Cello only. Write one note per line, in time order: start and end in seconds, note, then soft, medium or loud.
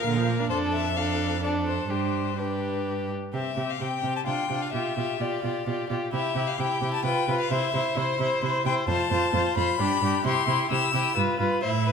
0.04 0.42 A#2 soft
0.50 1.86 F2 soft
1.89 3.11 G2 soft
3.34 3.42 C3 soft
3.57 3.65 C3 soft
3.81 3.89 C3 soft
4.04 4.12 C3 soft
4.27 4.35 C3 soft
4.50 4.58 C3 soft
4.73 4.81 B2 soft
4.97 5.05 B2 soft
5.20 5.28 B2 soft
5.44 5.52 B2 soft
5.67 5.75 B2 soft
5.90 5.98 B2 soft
6.13 6.21 C3 soft
6.35 6.43 C3 soft
6.59 6.67 C3 soft
6.81 6.89 C3 soft
7.04 7.12 C3 soft
7.28 7.36 C3 soft
7.51 7.59 C3 soft
7.74 7.82 C3 soft
7.97 8.05 C3 soft
8.20 8.28 C3 soft
8.43 8.51 C3 soft
8.65 8.73 C3 medium
8.88 8.96 F2 medium
9.11 9.19 F2 soft
9.34 9.42 F2 medium
9.57 9.65 F2 soft
9.79 9.87 G2 medium
10.02 10.10 G2 medium
10.25 10.33 C3 medium
10.47 10.55 C3 soft
10.71 10.79 C3 medium
10.94 11.02 C3 soft
11.17 11.25 G2 soft
11.40 11.48 G2 soft
11.63 11.92 A2 soft